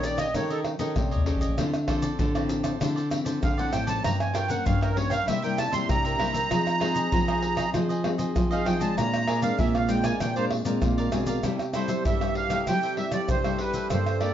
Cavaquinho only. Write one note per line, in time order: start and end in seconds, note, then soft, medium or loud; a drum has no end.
0.00 0.18 G4 soft
0.00 0.17 C#5 medium
0.00 0.16 D#5 medium
0.18 0.34 G4 medium
0.18 0.33 C#5 medium
0.18 0.33 D#5 medium
0.35 0.49 D#4 soft
0.35 0.49 G4 soft
0.35 0.49 C#5 soft
0.35 0.49 D#5 soft
0.50 0.64 G4 medium
0.50 0.64 C#5 medium
0.50 0.64 D#5 medium
0.64 muted cavaquinho stroke soft
0.79 1.11 G4 soft
0.79 1.10 C#5 medium
0.79 1.10 D#5 medium
1.11 1.25 G4 medium
1.11 1.26 C#5 medium
1.11 1.26 D#5 medium
1.26 1.41 D#4 medium
1.26 1.41 G4 medium
1.26 1.41 C#5 medium
1.26 1.40 D#5 medium
1.41 1.57 G4 medium
1.41 1.56 C#5 medium
1.41 1.56 D#5 medium
1.58 1.72 F4 soft
1.58 1.73 A4 soft
1.58 1.73 C5 soft
1.58 1.73 D5 soft
1.74 muted cavaquinho stroke soft
1.88 2.02 F4 medium
1.88 2.03 A4 medium
1.88 2.02 C5 medium
1.88 2.01 D5 medium
2.02 2.18 A4 medium
2.02 2.18 C5 medium
2.02 2.17 D5 medium
2.19 2.33 F4 soft
2.19 2.34 A4 soft
2.19 2.34 C5 medium
2.19 2.34 D5 medium
2.35 2.64 A4 soft
2.35 2.63 C5 medium
2.35 2.62 D5 medium
2.63 2.80 A4 medium
2.63 2.79 C5 medium
2.63 2.79 D5 medium
2.80 2.95 F4 soft
2.80 2.95 A4 soft
2.80 2.95 C5 soft
2.80 2.95 D5 medium
2.96 3.09 A4 medium
2.96 3.09 C5 medium
2.96 3.09 D5 medium
3.10 muted cavaquinho stroke soft
3.25 3.57 A4 soft
3.25 3.56 C5 medium
3.25 3.56 D5 medium
3.58 3.72 A4 medium
3.58 3.73 C5 medium
3.58 3.72 D5 medium
3.73 3.87 F4 soft
3.73 3.87 A4 medium
3.73 3.87 C5 medium
3.73 3.86 D5 medium
3.87 4.03 A4 medium
3.87 4.03 C5 medium
3.87 4.02 D5 medium
4.04 4.18 F4 soft
4.04 4.19 A#4 soft
4.04 4.19 C#5 soft
4.04 4.19 G5 soft
4.20 muted cavaquinho stroke soft
4.34 4.49 F4 medium
4.34 4.48 A#4 medium
4.34 4.48 C#5 medium
4.34 4.47 G5 medium
4.48 4.64 A#4 medium
4.48 4.64 C#5 medium
4.48 4.64 G5 medium
4.65 4.80 F4 medium
4.65 4.80 A#4 medium
4.65 4.80 C#5 medium
4.65 4.80 G5 medium
4.81 5.11 A#4 medium
4.81 5.09 C#5 medium
4.81 5.09 G5 medium
5.10 5.26 A#4 medium
5.10 5.26 C#5 medium
5.10 5.25 G5 medium
5.26 5.41 E4 soft
5.26 5.41 A#4 soft
5.26 5.42 C5 medium
5.26 5.41 E5 soft
5.42 5.57 A#4 medium
5.42 5.57 C5 medium
5.42 5.57 E5 medium
5.57 muted cavaquinho stroke soft
5.71 6.03 A#4 soft
5.71 6.03 C5 medium
5.71 6.02 E5 medium
6.04 6.18 A#4 medium
6.04 6.19 C5 medium
6.04 6.19 E5 medium
6.19 6.33 E4 medium
6.19 6.34 A#4 medium
6.19 6.33 C5 medium
6.19 6.32 E5 medium
6.33 6.49 A#4 medium
6.33 6.49 C5 medium
6.33 6.49 E5 medium
6.50 6.65 F4 soft
6.50 6.65 G#4 soft
6.50 6.65 C5 medium
6.50 6.66 D#5 medium
6.66 muted cavaquinho stroke soft
6.80 6.95 F4 medium
6.80 6.95 G#4 medium
6.80 6.94 C5 medium
6.80 6.93 D#5 medium
6.94 7.11 G#4 medium
6.94 7.10 C5 medium
6.94 7.10 D#5 medium
7.12 7.26 F4 soft
7.12 7.26 G#4 medium
7.12 7.27 C5 medium
7.12 7.26 D#5 medium
7.28 7.57 G#4 medium
7.28 7.56 C5 medium
7.28 7.55 D#5 medium
7.56 7.72 G#4 medium
7.56 7.72 C5 medium
7.56 7.72 D#5 medium
7.74 7.88 F4 soft
7.74 7.88 G#4 soft
7.74 7.89 C5 medium
7.74 7.88 D#5 soft
7.89 8.03 G#4 medium
7.89 8.03 C5 medium
7.89 8.03 D#5 medium
8.04 muted cavaquinho stroke soft
8.18 8.50 G#4 soft
8.18 8.49 C5 medium
8.18 8.49 D#5 medium
8.51 8.65 G#4 medium
8.51 8.65 C5 medium
8.51 8.65 D#5 medium
8.65 8.80 F4 medium
8.65 8.80 G#4 medium
8.65 8.80 C5 medium
8.65 8.79 D#5 medium
8.80 8.96 G#4 medium
8.80 8.96 C5 medium
8.80 8.95 D#5 medium
8.97 9.11 G#4 soft
8.97 9.11 A#4 medium
8.97 9.12 D5 medium
8.97 9.12 F5 soft
9.13 muted cavaquinho stroke soft
9.27 9.42 G#4 medium
9.27 9.42 A#4 medium
9.27 9.41 D5 medium
9.27 9.42 F5 medium
9.42 9.58 A#4 medium
9.42 9.57 D5 medium
9.42 9.57 F5 medium
9.59 9.73 G#4 medium
9.59 9.73 A#4 soft
9.59 9.73 D5 medium
9.59 9.74 F5 medium
9.74 10.04 A#4 medium
9.74 10.02 D5 medium
9.74 10.03 F5 medium
10.04 10.19 A#4 medium
10.04 10.19 D5 medium
10.04 10.19 F5 medium
10.21 10.35 G#4 soft
10.21 10.35 A#4 medium
10.21 10.35 D5 medium
10.21 10.35 F5 soft
10.36 10.50 A#4 medium
10.36 10.50 D5 medium
10.36 10.50 F5 medium
10.51 muted cavaquinho stroke soft
10.65 10.96 A#4 medium
10.65 10.95 D5 medium
10.65 10.96 F5 medium
10.98 11.11 A#4 medium
10.98 11.12 D5 medium
10.98 11.12 F5 medium
11.12 11.26 G#4 medium
11.12 11.27 A#4 medium
11.12 11.26 D5 medium
11.12 11.27 F5 medium
11.27 11.43 A#4 medium
11.27 11.42 D5 medium
11.27 11.42 F5 medium
11.44 11.58 E4 soft
11.44 11.58 A4 soft
11.44 11.59 C5 medium
11.44 11.59 E5 soft
11.61 muted cavaquinho stroke soft
11.74 11.89 E4 medium
11.74 11.89 A4 medium
11.74 11.89 C5 medium
11.74 11.88 E5 medium
11.89 12.05 A4 medium
11.89 12.04 C5 medium
11.89 12.04 E5 medium
12.06 12.20 E4 soft
12.06 12.20 A4 soft
12.06 12.20 C5 medium
12.06 12.20 E5 soft
12.21 12.51 A4 medium
12.21 12.50 C5 medium
12.21 12.49 E5 medium
12.50 12.66 A4 medium
12.50 12.66 C5 medium
12.50 12.65 E5 medium
12.67 12.81 E4 soft
12.67 12.82 A4 soft
12.67 12.82 C5 soft
12.67 12.82 E5 soft
12.83 12.97 A4 medium
12.83 12.97 C5 medium
12.83 12.97 E5 medium
12.98 muted cavaquinho stroke soft
13.12 13.44 A4 soft
13.12 13.43 C5 soft
13.12 13.43 E5 medium
13.45 13.59 A4 medium
13.45 13.59 C5 medium
13.45 13.59 E5 medium
13.60 13.74 E4 soft
13.60 13.74 A4 soft
13.60 13.74 C5 soft
13.60 13.73 E5 soft
13.74 13.90 A4 medium
13.74 13.90 C5 medium
13.74 13.89 E5 medium
13.91 14.05 G4 soft
13.91 14.05 A#4 soft
13.91 14.05 D5 soft
13.91 14.06 F5 soft
14.06 muted cavaquinho stroke soft
14.20 14.34 G4 medium
14.20 14.34 A#4 medium
14.20 14.34 D5 medium
14.20 14.34 F5 medium